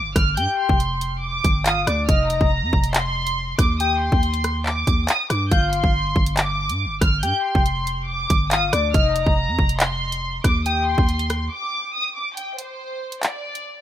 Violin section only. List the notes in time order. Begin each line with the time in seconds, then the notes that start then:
Already playing: D6
0.16 F6
0.38 G6
0.59 C6
1.23 D6
1.66 D#6
1.87 D6
2.09 F6
2.30 A#5
2.94 C6
3.59 D6
3.80 D#6
4.01 C6
4.66 D6
5.09 D#6
5.30 D6
5.51 G6
5.73 C6
6.37 D6
7.02 F6
7.24 G6
7.45 C6
8.09 D6
8.51 D#6
8.73 D6
8.94 F6
9.15 A#5
9.80 C6
10.44 D6
10.66 D#6
10.87 C6
11.52 D6
11.95 D#6
12.16 D6
12.36 G5
12.59 C5
13.23 D5